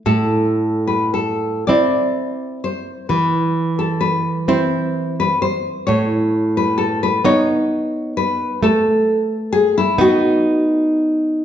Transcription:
X:1
M:12/8
L:1/16
Q:3/8=43
K:Am
V:1 name="Nylon-string guitar"
A3 B A2 d4 c2 B3 A B2 c3 B c2 | ^c3 B A B c4 B2 A4 ^G E ^F6 |]
V:2 name="Nylon-string guitar"
A,,6 [CE]6 E,6 [CE]6 | A,,6 [B,^D]6 A,6 [B,D]6 |]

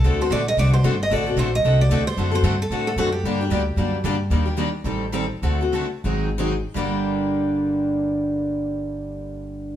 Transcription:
X:1
M:4/4
L:1/8
Q:"Swing" 1/4=224
K:Gm
V:1 name="Steel-string acoustic guitar"
A c d e d c2 e | d2 c e2 d2 c- | c c2 A2 A ^F G- | G6 z2 |
z8 | z8 | z8 | z8 |]
V:2 name="Steel-string acoustic guitar"
[D,A,C^FA] [CFA] [D,A,CFA] z [D,A,CFA] z [D,A,CFA] z | [D,A,C^FA] [CFA] [D,A,CFA] z [D,A,CFA] z [D,A,CFA] z | [D,A,C^FA] [CFA] [D,A,CFA] z [D,A,CFA] z [D,A,CFA] z | [D,G,B,DG] [B,DG] [D,G,B,DG] z [D,G,B,DG] z [D,G,B,DG] z |
[E,G,B,DG] [B,DG] [E,G,B,DG] z [E,G,CGA] z [E,G,CGA] z | [D,A,C^FA] [CFA] [D,A,CFA] z [E,_G,CE_A] z [E,G,CEA] z | [G,,D,G,B,DG]8- | [G,,D,G,B,DG]8 |]
V:3 name="Steel-string acoustic guitar"
[D,A,C^FA] z [D,A,CFA] z [D,A,CFA] z [D,A,CFA] z | [D,A,C^FA] z [D,A,CFA] z [D,A,CFA] z [D,A,CFA] z | [D,A,C^FA] z [D,A,CFA] z [D,A,CFA] z [D,A,CFA] z | [D,G,B,DG] z [D,G,B,DG] z [D,G,B,DG] z [D,G,B,DG] z |
[E,G,B,DG] z [E,G,B,DG] z [E,G,CGA] z [E,G,CGA] z | [D,A,C^FA] z [D,A,CFA] z [E,_G,CE_A] z [E,G,CEA] z | [G,,D,G,B,DG]8- | [G,,D,G,B,DG]8 |]
V:4 name="Upright bass" clef=bass
D,,2 B,,,2 C,,2 G,,,2 | A,,,2 B,,,2 C,,2 D,,2 | ^F,,2 G,,2 A,,2 F,,2 | G,,2 D,,2 ^F,,2 G,,2 |
E,,4 A,,,4 | D,,4 _A,,,4 | G,,,8- | G,,,8 |]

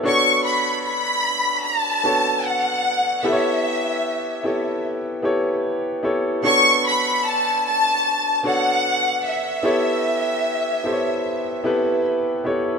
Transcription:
X:1
M:4/4
L:1/16
Q:"Swing 16ths" 1/4=75
K:Bm
V:1 name="Violin section"
c'2 b2 b4 a4 f4 | e8 z8 | c'2 b2 a2 a4 f4 e2- | e12 z4 |]
V:2 name="Grand piano"
[B,DFAc]6 z4 [B,DFAc]4 z2 | [B,EGABc]4 z2 [B,EGAc]3 z [B,EGAc]3 z [B,EGAc]2 | [B,DFAc]6 z4 [B,DFAc]4 z2 | [B,EGAc]4 z2 [B,EGA=c^c]3 z [B,EGAB]3 z [B,EGAc]2 |]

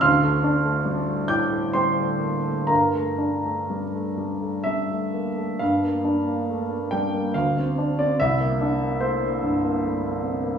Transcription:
X:1
M:3/4
L:1/16
Q:1/4=70
K:Gdor
V:1 name="Grand piano"
[fc'f']6 [gd'g']2 [cgc']4 | [Bfb]8 e4 | f6 g2 f3 d | e4 c4 z4 |]
V:2 name="Grand piano"
D,, A, D A, G, A, A,, A, G, A, B, A, | G,, A, D A, G, A, G, A, G, A, B, A, | G,, B, D B, A, B, G, B, D,, C D C | C,, B, D B, A, B, G,, B, A, B, C B, |]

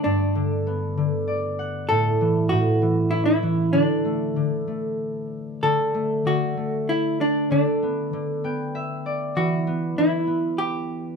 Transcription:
X:1
M:3/4
L:1/16
Q:1/4=97
K:D
V:1 name="Hollow-body jazz guitar"
D8- D2 z2 | A4 F4 E E3 | D8- D2 z2 | A4 F4 E2 D2 |
D8- D2 z2 | F4 E4 G4 |]
V:2 name="Harp"
z8 d2 f2 | z12 | z12 | z12 |
z6 g2 e2 d2 | z12 |]
V:3 name="Harp" clef=bass
G,,2 D,2 B,2 D,6 | A,,2 E,2 A,,2 E,2 C2 E,2 | D,2 A,2 D,2 A,6 | D,2 A,2 D,2 A,6 |
D,2 B,2 D,2 B,6 | E,2 B,2 E,2 B,6 |]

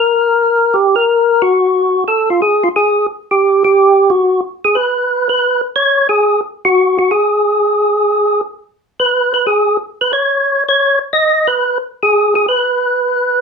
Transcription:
X:1
M:4/4
L:1/8
Q:"Swing" 1/4=179
K:G#m
V:1 name="Tonewheel organ"
A4 =G A3 | F4 =A ^E G E | G2 z =G2 G3 | F2 z G B3 B- |
B z c2 G2 z F- | F F G6- | G2 z3 B2 B | G2 z B c3 c- |
c z d2 B2 z G- | G G B6 |]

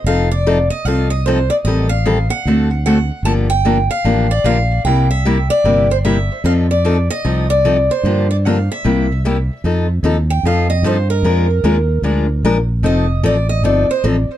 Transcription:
X:1
M:4/4
L:1/8
Q:"Swing" 1/4=150
K:Fmix
V:1 name="Steel-string acoustic guitar"
f d2 e f e c d | e f2 _g3 ^f2 | a g2 f2 d f2 | g =e2 d2 c e2 |
f d2 e2 d2 c- | c d f =e3 z2 | z3 g f e c B- | B4 z4 |
e2 d e d c z2 |]
V:2 name="Steel-string acoustic guitar"
[F,CEA] z [F,CEA] z [F,CEA] z [F,CEA] z | [E,G,CGA] z [E,G,CGA] z [D,A,C^FA] z [D,A,CFA] z | [D,F,B,DG] z [D,F,B,DG] z [D,F,B,DG] z [D,F,B,DG] z | [C,G,B,=EG] z [C,G,B,EG] z [C,G,B,EG] z [C,G,B,EG] z |
[F,CEA] z [F,CEA] z [F,CEA] z [F,CEA] z | [D,F,B,DG] z [D,F,B,DG] z [C,G,B,=EG] z [C,G,B,EG] z | [F,CEA] z [F,CEA] z [F,CEA] z [F,CEA] z | [F,_A,DFB] z [F,A,DFB] z [F,A,DFB] z [F,A,DFB] z |
[F,CEA] z [F,CEA] z [F,CEA] z [F,CEA] z |]
V:3 name="Fingered electric bass" clef=bass
F,,,4 C,,4 | A,,,4 D,,4 | G,,,4 A,,,2 B,,,2 | C,,4 G,,,4 |
F,,4 C,,4 | G,,4 C,,4 | F,,2 E,,2 F,,2 G,,2 | F,,2 E,,2 D,,2 B,,,2 |
F,,,2 A,,,2 G,,, z A,,, z |]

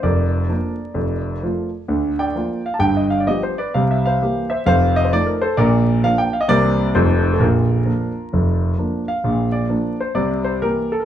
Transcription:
X:1
M:4/4
L:1/16
Q:"Swing" 1/4=130
K:Bb
V:1 name="Grand piano"
[Bd]12- [Bd]2 z2 | z2 [dg]4 f a g e f d e c [=Bd]2 | f =e [cf]4 [ce]2 [cf]2 _e c d B [Ac]2 | [Bd]4 f g f e [Bd]4 [Ac]3 A |
[FB]12- [FB]2 f2- | f2 d4 c2 d2 c2 B2 A B |]
V:2 name="Grand piano" clef=bass
[F,,,F,,]4 [F,B,D]4 [F,,,F,,]4 [F,A,F]4 | [D,,D,]4 [F,B,F]4 [G,,,G,,]4 [F,=B,G]4 | [C,,C,]4 [=E,B,G]4 [F,,,F,,]4 [F,A,_E]4 | [B,,,B,,]4 [F,B,D]4 [C,,C,=E,B,C]4 [F,,,F,,F,A,_E]4 |
[B,,,B,,]4 [F,B,D]4 [F,,,F,,]4 [F,B,D]4 | [B,,,B,,]4 [F,B,D]4 [C,,C,]4 [=E,B,G]4 |]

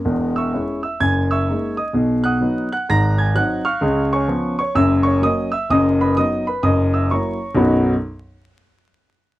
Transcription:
X:1
M:4/4
L:1/8
Q:"Swing" 1/4=128
K:B
V:1 name="Grand piano"
z [ec'e']2 [ee'] [gg'] [ec'e']2 [dd'] | z [fd'f']2 [ff'] [aa'] [gg'] [ff'] [^ec'^e']- | [^ec'^e'] [cgc']2 [cc'] [=e=e'] [cc'] [dd'] [ee'] | [dd'] [Bb] [dd'] [Bb] [dd'] [ee'] [cac']2 |
[B,,,F,,F,B,DFb] z6 z |]
V:2 name="Grand piano" clef=bass
[E,,,E,,]2 [G,CE]2 [F,,,F,,]2 [G,A,D]2 | [B,,,B,,]2 [F,B,D]2 [G,,,G,,]2 [F,^B,D]2 | [C,,C,]2 [^E,B,C]2 [F,,,F,,]2 [F,A,C]2 | [F,,,F,,]2 [F,B,D]2 [F,,,F,,]2 [F,A,E]2 |
z8 |]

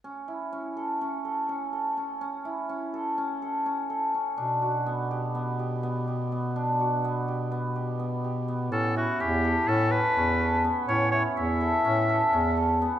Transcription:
X:1
M:9/8
L:1/8
Q:3/8=83
K:Amix
V:1 name="Oboe"
z8 z | z8 z | z8 z | z8 z |
A F G2 A B3 z | c c e6 z |]
V:2 name="Hammered dulcimer"
C E C A C A C A C | C E C A C A C A C | D F B, G B, G B, G B, | D F B, G B, G B, G B, |
C E C A C A C A B, | C E C A C A C A B, |]
V:3 name="Bass clarinet" clef=bass
z8 z | z8 z | B,,8- B,,- | B,,8- B,, |
A,,2 E,,2 A,,2 E,,3 | A,,2 E,,2 A,,2 E,,3 |]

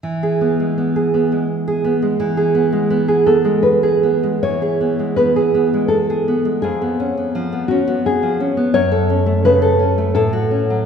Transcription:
X:1
M:3/4
L:1/16
Q:1/4=83
K:E
V:1 name="Nylon-string guitar"
z12 | z6 A2 B4 | c4 B4 A4 | G6 F2 G2 z2 |
c4 B4 A4 |]
V:2 name="Nylon-string guitar"
E, G B, G, B, G B, G,2 G B, G, | E, G B, G, B, G B, G,2 G B, G, | E, G B, G, B, G B, G,2 G B, G, | ^E,, B, C B, ^E, B, C B,2 E, C B, |
F,, A C A, C, A C A, A,, F C F, |]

